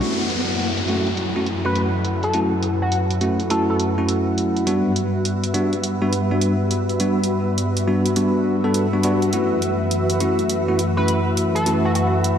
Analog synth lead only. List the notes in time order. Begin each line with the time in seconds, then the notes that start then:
1.65 B4
2.23 A4
2.82 F#4
3.50 A4
3.70 A4
10.97 B4
11.55 A4
11.85 F#4
11.95 F#4